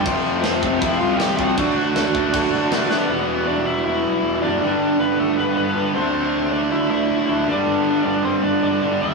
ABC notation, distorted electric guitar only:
X:1
M:4/4
L:1/8
Q:1/4=158
K:Ddor
V:1 name="Distorted electric guitar" clef=bass
[F,,C,F,]2 [F,,C,F,] [F,,C,F,] [F,,C,F,]2 [F,,C,F,] [F,,C,F,] | [D,A,D]2 [D,A,D] [D,A,D] [D,A,D]2 [D,A,D] [D,A,D] | [K:G] [E,,B,,E,]6- [E,,B,,E,] [E,,B,,E,] | [G,,D,G,]6- [G,,D,G,] [D,A,D]- |
[D,A,D]6 [D,A,D] [G,,D,G,]- | [G,,D,G,]6 [G,,D,G,] z |]